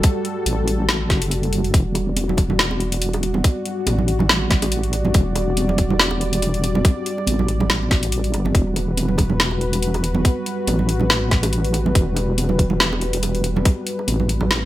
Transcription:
Already playing: G3 F#4 A4
0.03 kick, closed hi-hat
0.25 closed hi-hat
0.46 A1, closed hi-hat
0.68 closed hi-hat
0.89 snare
1.10 F#1, kick, snare, closed hi-hat
1.22 closed hi-hat
1.31 closed hi-hat
1.43 closed hi-hat
1.53 closed hi-hat
1.64 closed hi-hat
1.74 E1 D5, kick, closed hi-hat
1.95 closed hi-hat, high bongo
2.16 closed hi-hat, high conga
2.29 low conga
2.37 kick, closed hi-hat, high bongo
2.50 low conga
2.59 snare
2.71 high bongo, high conga
2.80 closed hi-hat
2.92 closed hi-hat
3.02 closed hi-hat
3.13 closed hi-hat, high bongo
3.23 closed hi-hat
3.34 high conga, low conga
3.44 kick, closed hi-hat, high bongo
3.66 closed hi-hat
3.86 A1, closed hi-hat, high bongo, high conga
3.98 low conga
4.08 closed hi-hat
4.19 high bongo, low conga
4.29 snare
4.41 high conga
4.51 kick, snare, closed hi-hat
4.62 closed hi-hat, high bongo
4.72 closed hi-hat
4.83 closed hi-hat
4.93 closed hi-hat, high bongo
5.05 high conga, low conga
5.14 E1, kick, closed hi-hat
5.35 closed hi-hat, high bongo
5.57 closed hi-hat, high conga
5.69 high bongo, low conga
5.78 kick, closed hi-hat
5.90 low conga
6.00 snare
6.11 high bongo, high conga
6.21 closed hi-hat
6.33 closed hi-hat
6.42 closed hi-hat, high bongo
6.54 closed hi-hat
6.64 closed hi-hat
6.75 high conga, low conga
6.85 kick, closed hi-hat, high bongo
7.06 closed hi-hat
7.18 high bongo
7.27 A1, closed hi-hat, high conga
7.39 low conga
7.48 closed hi-hat
7.60 high bongo, low conga
7.70 snare
7.83 high conga
7.91 kick, snare, closed hi-hat, high bongo
8.03 closed hi-hat
8.12 closed hi-hat
8.24 closed hi-hat
8.33 G1, closed hi-hat, high bongo
8.45 high conga, low conga
8.55 E1 B4, kick, closed hi-hat
8.76 closed hi-hat, high bongo
8.97 closed hi-hat, high conga
9.08 low conga
9.18 kick, closed hi-hat, high bongo
9.30 low conga
9.40 snare
9.50 high bongo, high conga
9.61 closed hi-hat
9.73 closed hi-hat
9.83 closed hi-hat
9.94 closed hi-hat, high bongo
10.04 closed hi-hat
10.15 high conga, low conga
10.25 kick, closed hi-hat, high bongo
10.46 closed hi-hat
10.67 A1, closed hi-hat, high bongo, high conga
10.79 low conga
10.89 closed hi-hat
11.00 high bongo, low conga
11.10 snare
11.21 high conga
11.31 kick, snare, closed hi-hat
11.43 closed hi-hat, high bongo
11.53 closed hi-hat
11.65 closed hi-hat
11.73 closed hi-hat, high bongo
11.86 high conga, low conga
11.95 E1, kick, closed hi-hat
12.16 closed hi-hat, high bongo
12.38 closed hi-hat, high conga
12.49 high bongo, low conga
12.59 kick, closed hi-hat
12.70 low conga
12.80 snare
12.92 high bongo, high conga
13.01 closed hi-hat
13.13 closed hi-hat
13.23 closed hi-hat, high bongo
13.35 closed hi-hat
13.44 closed hi-hat
13.56 high conga, low conga
13.65 kick, closed hi-hat, high bongo
13.87 closed hi-hat
13.99 high bongo
14.08 A1, closed hi-hat, high conga
14.20 low conga
14.29 closed hi-hat
14.41 high bongo, low conga
14.51 snare
14.62 high conga

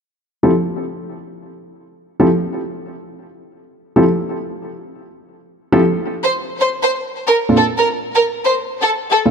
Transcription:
0.43 F3 C4 E4 G4 A4
2.20 F3 C4 E4 G4 A4
3.96 F3 C4 E4 G4 A4
5.72 F3 C4 E4 G4 A4
6.24 C5
6.61 C5
6.83 C5
7.27 A#4
7.49 A#2 C4 D4 F4 A4
7.57 A4
7.79 A#4
8.15 A#4
8.45 C5
8.82 A4
9.11 A4
9.26 A#2 C4 D4 F4 A4

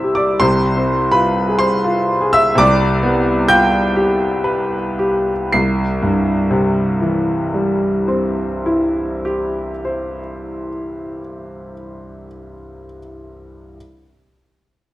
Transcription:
Already playing: C2 C3 C4 E4 G4 C5 E5 E6
0.04 G4
0.15 D5 D6
0.40 C2 C3 C5 C6
0.77 C4
1.12 F4 B4 B5
1.49 G#4
1.59 C5 C6
1.84 F4
2.21 G#4
2.33 E5 E6
2.55 C2 C3 D5 D6
3.03 B3
3.48 F4 G5 G6
3.96 G4
4.44 B4
4.99 G4
5.53 C2 C7
6.02 G2
6.51 C3
7.02 E3
7.54 G3
8.08 C4
8.66 E4
9.25 G4
9.85 C5

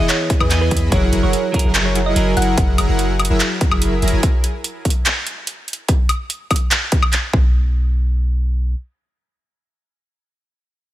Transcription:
Already playing: E3 B3 G#4 D#5
0.00 E1 E3 E4 G#4 D#5 F#5
0.09 C#5, clap, closed hi-hat
0.30 kick, closed hi-hat
0.40 E2 E3 E4 G#4 B4 D#5 G#5, high woodblock
0.50 E3 B3 G#4 D#5, clap, closed hi-hat
0.61 B4
0.71 E2 E3 E4 G#4 D#5 B5, kick, closed hi-hat
0.77 closed hi-hat
0.90 F#1 F#3 E4 G#4 A#4 C#5 F#5, kick, closed hi-hat
1.13 F#1 F#3 E4 G#4 A#4 F#5, closed hi-hat
1.23 F#1 F#3 E4 G#4 A#4 C#5 F#5
1.33 closed hi-hat
1.52 F#3 E4 G#4, kick, closed hi-hat
1.56 A#4, closed hi-hat
1.64 F#1 F#3 E4 G#4 A#4 F#5
1.75 clap, closed hi-hat
1.85 C#5
1.95 closed hi-hat
2.06 D#5
2.15 F#1 F#3 E4 G#4 A#4 G#5, closed hi-hat
2.37 F#1 F#3 E4 G#4 A#4 F#5, closed hi-hat
2.42 closed hi-hat
2.57 F#1 F#3 E4 G#4 A#4 F#5, kick, closed hi-hat
2.78 F#1 F#3 E4 G#4 A#4 A#5, closed hi-hat, high woodblock
2.89 F#1 F#3 E4 G#4 A#4 F#5
2.99 closed hi-hat
3.19 closed hi-hat, high woodblock
3.25 closed hi-hat
3.30 F#1 F#3 E4 G#4 A#4 E5
3.40 clap, closed hi-hat
3.61 kick, closed hi-hat
3.71 F#1 F#3 E4 G#4 A#4 E5, high woodblock
3.82 closed hi-hat
4.02 F#1 F#3 E4 G#4 A#4 A#5, closed hi-hat
4.08 closed hi-hat
4.13 F#1 F#3 E4 G#4 A#4 G#5
4.23 kick, closed hi-hat
4.44 closed hi-hat
4.64 closed hi-hat
4.85 kick, closed hi-hat
4.90 closed hi-hat
5.06 clap, closed hi-hat
5.27 closed hi-hat
5.47 closed hi-hat
5.68 closed hi-hat
5.73 closed hi-hat
5.88 kick, closed hi-hat
6.09 closed hi-hat, high woodblock
6.30 closed hi-hat
6.51 kick, closed hi-hat, high woodblock
6.56 closed hi-hat
6.71 clap, closed hi-hat
6.92 kick, closed hi-hat
7.02 high woodblock
7.13 clap, closed hi-hat
7.33 B1, kick

